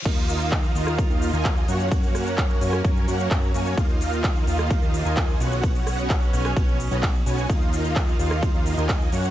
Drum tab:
CC |x---------------|----------------|----------------|----------------|
RD |x---x---x---x---|x---x---x---x---|x---x---x---x---|x---x---x---x---|
HH |xxoxxxoxxxoxxxox|xooxxxoxxxoxxxox|xxoxxxoxxxoxxxox|xooxxxoxxxoxxxox|
SH |xxxxxxxxxxxxxxxx|xxxxxxxxxxxxxxxx|xxxxxxxxxxxxxxxx|xxxxxxxxxxxxxxxx|
CP |----x-------x---|----x-------x---|----x-------x---|----x-------x---|
SD |-------r--------|--r----r--------|-------r--------|--r----r--------|
BD |o---o---o---o---|o---o---o---o---|o---o---o---o---|o---o---o---o---|

CC |----------------|
RD |x---x---x---x---|
HH |xxoxxxoxxxoxxxox|
SH |xxxxxxxxxxxxxxxx|
CP |----x-------x---|
SD |-------r--------|
BD |o---o---o---o---|